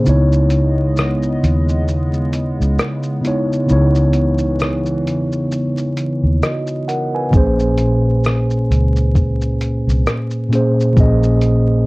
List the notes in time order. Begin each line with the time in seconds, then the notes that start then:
0.03 C#3 G#3 B3 D#4 D#5, shaker
0.07 C#2 E4 C#5
0.32 shaker
0.50 closed hi-hat, shaker
0.97 cross-stick, shaker
1.23 shaker
1.43 D#2, closed hi-hat, shaker
1.69 shaker
1.88 shaker
2.14 shaker
2.33 closed hi-hat, shaker
2.60 C#2, shaker
2.79 cross-stick, shaker
3.03 shaker
3.21 C#3 B3 D#4, closed hi-hat, shaker
3.26 E4 C#5
3.53 shaker
3.66 C#3 E3 B3 D#4, shaker
3.70 C#2 E4 C#5
3.96 shaker
4.13 closed hi-hat, shaker
4.38 shaker
4.60 cross-stick, shaker
4.86 shaker
5.07 E2, closed hi-hat, shaker
5.32 shaker
5.52 shaker
5.78 shaker
5.97 closed hi-hat, shaker
6.24 D#2
6.43 F#4 D#5, cross-stick, shaker
6.67 shaker
6.88 A#4 F#5, closed hi-hat, shaker
7.15 B4 G#5
7.31 A#1 A#2 A#3 C#4, kick, shaker
7.35 G#4 C5
7.60 shaker
7.78 closed hi-hat, shaker
8.24 cross-stick, shaker
8.50 shaker
8.70 C#2, closed hi-hat, shaker
8.96 shaker
9.15 kick, shaker
9.42 shaker
9.61 closed hi-hat, shaker
9.87 C2, shaker
10.07 cross-stick, shaker
10.31 shaker
10.49 A#2 A#3 C#4, closed hi-hat, shaker
10.54 G#4 C5
10.81 shaker
10.94 A#1 A#2 A#3 C#4, kick, shaker
10.99 G#4 D#5
11.23 shaker
11.41 closed hi-hat, shaker